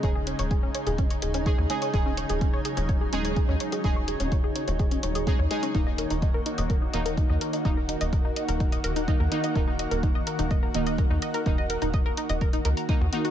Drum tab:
HH |x-xxx-xxxxxxx-xx|x-xxx-xxx-xxx-xx|x-xxx-xxxxxxx-xx|x-xxx-xxx-xxx-xx|
BD |o---o---o---o---|o---o---o---o---|o---o---o---o---|o---o---o---o---|

HH |x-xxx-xxxxxxx-xx|x-xxx-xxx-xxx-xx|x-xxx-xxxxxxx-xx|
BD |o---o---o---o---|o---o---o---o---|o---o---o---o---|